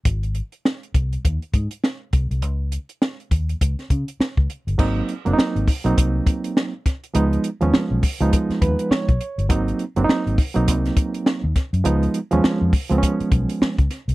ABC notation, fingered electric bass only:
X:1
M:4/4
L:1/16
Q:"Swing 16ths" 1/4=102
K:Abmix
V:1 name="Fingered electric bass" clef=bass
A,,,3 z3 C,,2 E,, z A,, z3 C,, C,, | D,,3 z3 E,,2 D,, z D, z2 D,, z =G,,, | A,,,2 z G,,, z A,,, z _C,, =C,,2 z6 | D,,2 z E,, z _C,, z D,, z2 E,, z2 C,, z =G,,, |
A,,,2 z G,,, z A,,, z _C,, =C,,2 z3 E,, z G,, | D,,2 z E,, z F,, z D,, z2 _C,, z2 D,, z =C,, |]